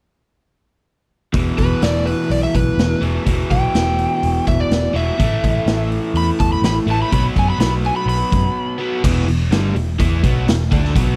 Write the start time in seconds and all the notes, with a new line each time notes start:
1.33 E1 E2 B2 E3, kick, open hi-hat
1.58 E1 B4, kick, open hi-hat
1.82 E1 D5, snare, open hi-hat
2.06 B4, open hi-hat
2.30 B1 D5, open hi-hat
2.43 E5
2.54 B1 B4, kick, open hi-hat
2.78 E1, snare, open hi-hat
3.01 E1 E2 B2 E3, open hi-hat
3.26 E1 E2 B2 E3, kick, open hi-hat
3.50 B1 G5, kick, open hi-hat
3.75 E1, snare, open hi-hat
3.99 open hi-hat
4.23 E1, open hi-hat
4.47 E1 E5, kick, open hi-hat
4.60 D5
4.71 E1, snare, open hi-hat
4.93 E1 E2 B2 E3 E5, open hi-hat
5.18 A1 A2 E3 A3, kick, open hi-hat
5.44 A1, kick, open hi-hat
5.66 A1, snare, open hi-hat
5.92 open hi-hat
6.14 E2 B5, open hi-hat
6.40 E2 A5, kick, open hi-hat
6.53 B5
6.62 A1 B5, snare, open hi-hat
6.86 A1 A2 E3 A3, open hi-hat
6.91 A5
7.02 B5
7.11 B1 B2 F#3 B3 B5, kick, open hi-hat
7.36 F#2 G#5, kick, open hi-hat
7.50 B5
7.58 B1 B5, snare, open hi-hat
7.85 G#5, open hi-hat
7.96 B5
8.06 B1 B5, open hi-hat
8.32 F#2, kick, open hi-hat
8.78 B2 F#3 B3
9.03 E1 E2 B2 E3, kick, crash
9.27 E1 E2 B2, open hi-hat
9.51 G1 G2 D3 G3, snare, open hi-hat
9.75 E1 E2 B2, open hi-hat
9.99 E2 E3 B3 E4, kick, open hi-hat
10.23 B1 B2 F#3 B3, kick, open hi-hat
10.47 E1 E2 B2, snare, open hi-hat
10.71 D2 D3 A3 D4, kick, open hi-hat
10.85 snare
10.95 B1 B2 F#3 B3, kick, open hi-hat